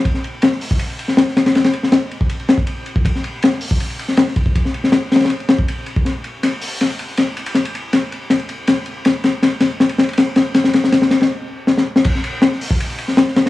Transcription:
\new DrumStaff \with { instrumentName = "Drums" } \drummode { \time 4/4 \tempo 4 = 160 <bd cymr>16 sn16 cymr8 <cymr sn>16 sn16 hho16 bd16 cymr16 cymr16 cymr16 sn16 <cymr sn>16 sn16 <cymr sn>16 <cymr sn>16 | <cymr sn>16 <cymr sn>16 cymr16 sn16 <cymr sn>8 cymr16 bd16 cymr16 cymr16 <cymr sn>16 bd16 cymr8 cymr16 bd16 | <bd cymr>16 sn16 cymr8 <cymr sn>16 sn16 hho16 bd16 cymr16 cymr16 cymr16 sn16 <cymr sn>16 sn16 <bd cymr>16 bd16 | <bd cymr>16 sn16 cymr16 sn16 <cymr sn>8 <cymr sn>32 <cymr sn>32 <cymr sn>32 <cymr sn>32 cymr16 cymr16 <cymr sn>16 bd16 cymr8 cymr16 bd16 |
<cymr sn>8 cymr8 <cymr sn>8 hho8 <cymr sn>16 cymr16 cymr8 <cymr sn>8 cymr16 cymr16 | <cymr sn>16 cymr16 cymr8 <cymr sn>8 cymr8 <cymr sn>16 cymr16 cymr8 <cymr sn>8 cymr8 | <cymr sn>8 <cymr sn>8 <cymr sn>8 <cymr sn>8 <cymr sn>16 cymr16 <cymr sn>32 cymr32 cymr32 cymr32 <cymr sn>8 <cymr sn>8 | <cymr sn>16 sn16 <cymr sn>16 sn16 <cymr sn>16 sn16 <cymr sn>16 <cymr sn>16 r4 sn16 sn8 sn16 |
<cymc bd cymr>16 sn16 cymr8 <cymr sn>16 sn16 hho16 bd16 cymr16 cymr16 cymr16 sn16 <cymr sn>16 sn16 <cymr sn>16 sn16 | }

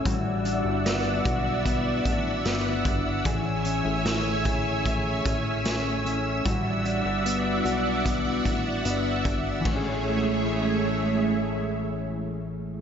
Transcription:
<<
  \new Staff \with { instrumentName = "String machine" } { \time 4/4 \key a \major \tempo 4 = 75 << { e'''1 | e'''1~ | e'''1 | <a gis' cis'' e''>1 | } \\ { <d'' e'' fis''>1 | <cis'' e'' gis''>1 | <d'' e'' fis''>1 | r1 | } >> }
  \new Staff \with { instrumentName = "Clean electric guitar" } { \time 4/4 \key a \major <g fis'>8 d'8 b8 fis'8 b8 d'8 b8 d'8 | <e gis'>8 cis'8 a8 gis'8 a8 cis'8 a8 cis'8 | <g fis'>8 d'8 b8 fis'8 b8 d'8 b8 d'8 | <e a cis' gis'>1 | }
  \new Staff \with { instrumentName = "Analog synth bass" } { \clef bass \time 4/4 \key a \major a,,8. g,,8. b,,4 a,,8 g,,8 g,,8 | a,,8. a,,16 a,,4. a,,4. | a,,8. g,,8. b,,4 a,,8 g,,8 g,,8 | a,,1 | }
  \new DrumStaff \with { instrumentName = "Drums" } \drummode { \time 4/4 <hh bd>8 hh8 <hh sn>8 <hh bd>8 <hh bd>8 <hh bd>8 <hh sn>8 <hh bd>8 | <hh bd>8 hh8 <hh sn>8 <hh bd>8 <hh bd>8 <hh bd>8 <hh sn>8 hh8 | <hh bd>8 hh8 hh8 hh8 <hh bd>8 <hh bd>8 hh8 <hh bd>8 | <bd cymr>4 r4 r4 r4 | }
>>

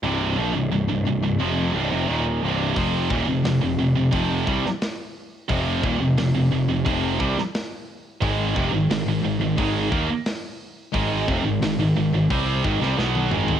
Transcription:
<<
  \new Staff \with { instrumentName = "Distorted electric guitar" } { \clef bass \time 4/4 \key f \dorian \tempo 4 = 88 <c, g, c>8 <bes, f>16 <c, g,>16 <c, g,>16 <c, g,>16 <c, g,>16 <c, g,>16 <f, c f>8 <c, g,>16 <f, c>16 <ees, bes, ees>8 <c, g, c>8 | <f, c f>8 <ees, bes,>16 <f, c>16 <f, c>16 <f, c>16 <f, c>16 <f, c>16 <f, c f>8 <c g>16 r4 r16 | <f, c f>8 <ees, bes,>16 <f, c>16 <f, c>16 <f, c>16 <f, c>16 <f, c>16 <f, c f>8 <c g>16 r4 r16 | <aes, ees aes>8 <f, c>16 <aes, ees>16 <aes, ees>16 <aes, ees>16 <aes, ees>16 <aes, ees>16 <aes, ees aes>8 <ees bes>16 r4 r16 |
<aes, ees aes>8 <f, c>16 <aes, ees>16 <aes, ees>16 <aes, ees>16 <aes, ees>16 <aes, ees>16 <c g c'>8 <aes, ees>16 <c g>16 <b, fis b>8 <aes, ees aes>8 | }
  \new Staff \with { instrumentName = "Distorted electric guitar" } { \clef bass \time 4/4 \key f \dorian <c, g, c>8 <bes, f>16 <c, g,>16 <c, g,>16 <c, g,>16 <c, g,>16 <c, g,>16 <f, c f>8 <c, g,>16 <f, c>16 <ees, bes, ees>8 <c, g, c>8 | <f, c f>8 <ees, bes,>16 <f, c>16 <f, c>16 <f, c>16 <f, c>16 <f, c>16 <f, c f>8 <c g>16 r4 r16 | <f, c f>8 <ees, bes,>16 <f, c>16 <f, c>16 <f, c>16 <f, c>16 <f, c>16 <f, c f>8 <c g>16 r4 r16 | <aes, ees aes>8 <f, c>16 <aes, ees>16 <aes, ees>16 <aes, ees>16 <aes, ees>16 <aes, ees>16 <aes, ees aes>8 <ees bes>16 r4 r16 |
<aes, ees aes>8 <f, c>16 <aes, ees>16 <aes, ees>16 <aes, ees>16 <aes, ees>16 <aes, ees>16 <c g c'>8 <aes, ees>16 <c g>16 <b, fis b>8 <aes, ees aes>8 | }
  \new Staff \with { instrumentName = "Picked electric bass" } { \clef bass \time 4/4 \key f \dorian c,,8 bes,,16 c,,16 c,,16 c,,16 c,,16 c,,16 f,,8 c,,16 f,,16 ees,,8 c,,8 | f,,8 ees,,16 f,,16 f,,16 f,,16 f,,16 f,,16 f,,8 c,16 r4 r16 | f,,8 ees,,16 f,,16 f,,16 f,,16 f,,16 f,,16 f,,8 c,16 r4 r16 | aes,,8 f,,16 aes,,16 aes,,16 aes,,16 aes,,16 aes,,16 aes,,8 ees,16 r4 r16 |
aes,,8 f,,16 aes,,16 aes,,16 aes,,16 aes,,16 aes,,16 c,8 aes,,16 c,16 b,,8 aes,,8 | }
  \new DrumStaff \with { instrumentName = "Drums" } \drummode { \time 4/4 r4 r4 r4 r4 | <hho bd>8 bd8 <hho sn>4 <hho bd>8 bd16 sn16 <hho sn>4 | <hho bd>8 bd8 <hho sn>4 <hho bd>8 bd16 sn16 <hho sn>4 | <hho bd>8 bd8 <hho sn>4 <hho bd>8 bd8 <hho sn>4 |
<hho bd>8 bd8 <hho sn>4 <hho bd>8 bd16 sn16 sn16 tommh16 toml16 tomfh16 | }
>>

